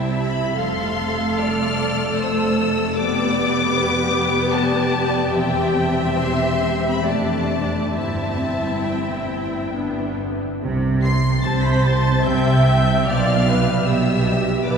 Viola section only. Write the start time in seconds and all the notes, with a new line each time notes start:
Already playing: G3 E4
0.57 A3 A4
2.97 B3 G4
5.34 C4
7.07 A3 D4
7.94 C4 E4
9.75 B3 D4
11.45 C5
12.25 E5
13.09 D5
13.49 B4
13.89 G4
14.66 B4